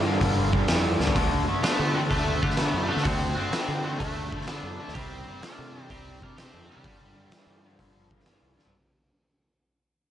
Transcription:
Already playing: fingered electric bass G2, tonewheel organ A#3 F4 A4
0.05 overdriven electric guitar G2 D3
0.20 fingered electric bass G1, overdriven electric guitar G2 D3, kick, open hi-hat
0.52 overdriven electric guitar G2 D3, fingered electric bass G2, kick
0.68 fingered electric bass F2, overdriven electric guitar G2 E3, snare, open hi-hat
1.00 fingered electric bass D2, overdriven electric guitar G2 D3, snare
1.07 floor tom
1.15 fingered electric bass D2, overdriven electric guitar D3 A3, tonewheel organ C4 F#4 D#5, kick, open hi-hat
1.48 overdriven electric guitar D3 A3
1.63 overdriven electric guitar D3 B3, lead electric guitar A3 D4, snare, open hi-hat
1.79 fingered electric bass D3
1.94 overdriven electric guitar D3 A3, lead electric guitar C4 F#4
2.10 fingered electric bass D2, overdriven electric guitar D3 A3, lead electric guitar A3 D4, kick, open hi-hat
2.42 overdriven electric guitar D3 A3, fingered electric bass D3, lead electric guitar A3 D4, kick
2.50 snare
2.57 overdriven electric guitar D3 B3, snare, open hi-hat
2.74 fingered electric bass F#2
2.88 overdriven electric guitar D3 A3, lead electric guitar A3 D4
2.97 fingered electric bass D3, snare
3.03 fingered electric bass D2, overdriven electric guitar D3 A3, lead electric guitar C4 F#4, kick, open hi-hat
3.35 overdriven electric guitar D3 A3, lead electric guitar C4 F#4
3.52 overdriven electric guitar D3 B3, snare, open hi-hat
3.68 fingered electric bass D3
3.84 overdriven electric guitar D3 A3, lead electric guitar C4 F#4
3.99 fingered electric bass D2, overdriven electric guitar D3 A3, lead electric guitar A3 D4, kick, open hi-hat
4.32 overdriven electric guitar D3 A3, fingered electric bass D3, kick
4.41 snare
4.47 overdriven electric guitar D3 B3, lead electric guitar D4 A4, snare, open hi-hat
4.63 fingered electric bass F#2
4.81 overdriven electric guitar D3 A3
4.88 fingered electric bass D2, tonewheel organ D#3, snare
4.93 fingered electric bass C2, overdriven electric guitar C3 G3, lead electric guitar C4 G4, tonewheel organ D4 A#4, kick, open hi-hat
5.28 overdriven electric guitar C3 G3
5.42 overdriven electric guitar C3 A3, lead electric guitar D4 A#4, snare, open hi-hat
5.59 fingered electric bass C3
5.75 overdriven electric guitar C3 G3
5.90 fingered electric bass C2, overdriven electric guitar C3 G3, lead electric guitar C4 G4, kick, open hi-hat
6.22 fingered electric bass C3, overdriven electric guitar C3 G3, lead electric guitar D4 A#4, kick
6.37 overdriven electric guitar C3 A3, lead electric guitar C4 G4, snare, open hi-hat
6.53 fingered electric bass F2
6.69 overdriven electric guitar C3 G3, lead electric guitar G3 D4
6.77 fingered electric bass C3
6.83 fingered electric bass G1, overdriven electric guitar G2 D3, tonewheel organ A#3 F4 A4, kick, open hi-hat
7.15 overdriven electric guitar G2 D3
7.31 overdriven electric guitar G2 E3, snare, open hi-hat
7.47 fingered electric bass G2
7.64 overdriven electric guitar G2 D3
7.71 lead electric guitar F3 C4
7.79 fingered electric bass G1, overdriven electric guitar G2 D3, kick, open hi-hat
8.10 fingered electric bass G2, overdriven electric guitar G2 D3, kick
8.20 snare
8.25 overdriven electric guitar G2 E3, snare, open hi-hat
8.42 fingered electric bass C2
8.57 overdriven electric guitar G2 D3, snare
8.65 fingered electric bass G2, floor tom

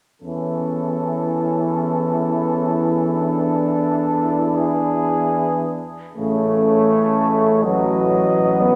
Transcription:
0.22 tuba E2, euphonium E3, trombone section C#4, french horn section E4, cornet A4
3.12 trombone section D4
4.56 cornet G#4
6.15 tuba A1, euphonium C#3, trombone section A3, french horn section A4, cornet C#5
7.63 tuba A1, euphonium F#3, trombone section F#3, french horn section B4, cornet D#5
8.60 trombone section B3

